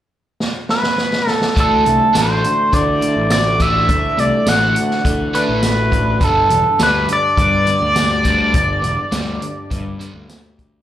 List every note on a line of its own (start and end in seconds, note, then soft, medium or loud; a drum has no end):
0.40 snare medium
0.69 1.29 B4 medium
0.69 snare medium
0.83 snare medium
0.98 snare medium
1.13 snare medium
1.27 1.53 A4 medium
1.27 snare medium
1.42 snare medium
1.55 1.82 D2 medium
1.55 1.83 D3 medium
1.55 2.73 E3 medium
1.55 1.84 A3 medium
1.55 1.84 D4 medium
1.55 kick loud
1.55 closed hi-hat medium
1.60 2.17 A4 medium
1.85 1.99 C2 medium
1.85 2.12 D3 medium
1.85 2.12 A3 medium
1.85 3.02 A3 medium
1.85 closed hi-hat medium
2.13 2.41 A1 medium
2.13 2.41 D3 medium
2.13 2.42 A3 medium
2.13 2.42 D4 medium
2.13 3.30 F#4 medium
2.13 2.75 C5 medium
2.13 snare medium
2.13 closed hi-hat medium
2.13 tambourine loud
2.43 2.70 D3 medium
2.43 2.70 A3 medium
2.43 3.60 D4 medium
2.43 closed hi-hat medium
2.72 2.99 D3 medium
2.72 3.11 D3 medium
2.72 3.89 E3 medium
2.72 2.99 A3 medium
2.72 3.31 D5 loud
2.72 kick medium
2.72 closed hi-hat medium
3.01 3.28 D3 medium
3.01 3.28 A3 medium
3.01 4.17 A3 medium
3.01 closed hi-hat medium
3.17 3.89 A1 medium
3.30 3.57 D3 medium
3.30 3.57 A3 medium
3.30 4.46 F#4 medium
3.30 3.63 D5 medium
3.30 snare loud
3.30 closed hi-hat medium
3.30 tambourine medium
3.60 3.87 D3 medium
3.60 3.88 A3 medium
3.60 4.76 D4 medium
3.60 3.88 D4 loud
3.60 4.21 E5 loud
3.60 kick medium
3.60 closed hi-hat medium
3.89 4.14 D2 medium
3.89 4.15 D3 medium
3.89 5.04 E3 medium
3.89 4.15 A3 medium
3.89 kick loud
3.89 closed hi-hat medium
4.17 4.30 C2 medium
4.17 4.44 D3 medium
4.17 5.34 A3 medium
4.17 4.44 A3 medium
4.17 4.50 D5 medium
4.17 closed hi-hat medium
4.46 4.72 A1 medium
4.46 4.74 D3 medium
4.46 4.75 A3 medium
4.46 4.75 D4 medium
4.46 5.62 F#4 medium
4.46 5.06 F#5 loud
4.46 snare loud
4.46 closed hi-hat medium
4.46 tambourine loud
4.75 5.02 D3 medium
4.75 5.02 A3 medium
4.75 5.91 D4 medium
4.75 closed hi-hat medium
4.91 snare soft
5.05 5.31 D3 medium
5.05 5.43 D3 medium
5.05 6.22 E3 medium
5.05 5.31 A3 medium
5.05 kick medium
5.05 closed hi-hat medium
5.33 5.61 D3 medium
5.33 5.61 A3 medium
5.33 6.19 A3 medium
5.33 5.62 D4 loud
5.33 6.25 B4 loud
5.33 closed hi-hat medium
5.49 6.21 A1 medium
5.62 5.89 D3 medium
5.62 5.89 A3 medium
5.62 6.21 F#4 medium
5.62 snare loud
5.62 closed hi-hat medium
5.62 tambourine medium
5.91 6.18 D3 medium
5.91 6.18 A3 medium
5.91 7.09 D4 medium
5.91 kick medium
5.91 closed hi-hat medium
6.20 6.46 G1 medium
6.20 6.48 G2 medium
6.20 6.49 D3 medium
6.20 6.49 G3 medium
6.20 6.50 B3 medium
6.20 kick loud
6.20 closed hi-hat medium
6.24 6.81 A4 medium
6.50 6.63 E1 medium
6.50 6.77 G2 medium
6.50 6.77 D3 medium
6.50 7.37 B3 medium
6.50 closed hi-hat medium
6.78 7.05 D2 loud
6.78 7.07 G2 medium
6.78 7.07 D3 medium
6.78 7.07 G3 medium
6.78 7.96 G4 medium
6.78 snare medium
6.78 closed hi-hat medium
6.78 tambourine loud
6.83 7.08 B4 medium
7.08 7.35 G2 medium
7.08 7.35 D3 medium
7.08 8.25 D4 medium
7.08 closed hi-hat medium
7.13 10.28 D5 loud
7.37 7.64 G2 medium
7.37 7.76 G2 medium
7.37 7.64 D3 medium
7.37 7.64 B3 medium
7.37 kick medium
7.37 closed hi-hat medium
7.66 7.93 G2 medium
7.66 7.93 D3 medium
7.66 8.53 B3 medium
7.66 closed hi-hat medium
7.82 8.56 D2 medium
7.95 8.22 G2 medium
7.95 8.22 D3 medium
7.95 9.12 G4 medium
7.95 snare medium
7.95 closed hi-hat medium
7.95 tambourine medium
8.23 8.52 G2 medium
8.23 8.52 D3 medium
8.23 8.52 G3 medium
8.23 9.40 D4 medium
8.23 kick medium
8.23 closed hi-hat medium
8.53 8.80 G1 medium
8.53 8.80 G2 medium
8.53 8.80 D3 medium
8.53 8.81 B3 medium
8.53 kick medium
8.53 closed hi-hat medium
8.82 8.96 E1 medium
8.82 9.09 G2 medium
8.82 9.09 D3 medium
8.82 9.70 B3 medium
8.82 closed hi-hat medium
9.11 9.38 D2 medium
9.11 9.40 G2 medium
9.11 9.40 D3 medium
9.11 9.40 G3 medium
9.11 10.28 G4 medium
9.11 snare loud
9.11 closed hi-hat medium
9.11 tambourine medium
9.41 9.68 G2 medium
9.41 9.68 D3 medium
9.41 10.58 D4 medium
9.41 closed hi-hat medium
9.70 9.97 G2 medium
9.70 10.09 G2 medium
9.70 9.97 D3 medium
9.70 10.00 B3 medium
9.70 kick medium
9.70 closed hi-hat medium
9.99 10.27 G2 medium
9.99 10.28 D3 medium
9.99 10.28 G3 medium
9.99 10.82 B3 medium
9.99 closed hi-hat medium
10.14 10.78 D2 medium
10.29 10.56 G2 medium
10.29 10.56 D3 medium
10.29 10.82 G4 medium
10.29 snare loud
10.29 closed hi-hat medium
10.29 tambourine loud
10.58 10.82 G2 medium
10.58 10.82 D3 medium
10.58 10.82 D4 medium
10.58 kick medium
10.58 closed hi-hat medium